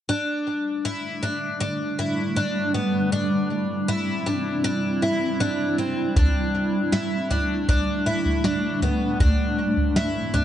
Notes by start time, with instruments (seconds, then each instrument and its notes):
0.09 ambient pad G3 A3 D4, twelve-string acoustic guitar D4
0.85 twelve-string acoustic guitar E4
1.23 twelve-string acoustic guitar D4
1.60 twelve-string acoustic guitar D4
1.99 twelve-string acoustic guitar E4
2.36 twelve-string acoustic guitar D4
2.74 twelve-string acoustic guitar B3
3.12 ambient pad C4 E4, twelve-string acoustic guitar D4
3.88 twelve-string acoustic guitar E4
4.26 twelve-string acoustic guitar D4
4.64 twelve-string acoustic guitar D4
5.02 twelve-string acoustic guitar E4
5.40 twelve-string acoustic guitar D4
5.78 twelve-string acoustic guitar C4
6.16 ambient pad A3 D4, twelve-string acoustic guitar D4, kick, floor tom
6.92 twelve-string acoustic guitar E4, snare
7.31 twelve-string acoustic guitar D4, floor tom
7.68 twelve-string acoustic guitar D4, kick, floor tom
8.06 twelve-string acoustic guitar E4
8.25 floor tom
8.44 twelve-string acoustic guitar D4, snare
8.82 twelve-string acoustic guitar B3, floor tom
9.20 ambient pad G2 F3 C4, twelve-string acoustic guitar D4, kick, floor tom
9.77 floor tom
9.96 twelve-string acoustic guitar E4, snare
10.34 twelve-string acoustic guitar D4, floor tom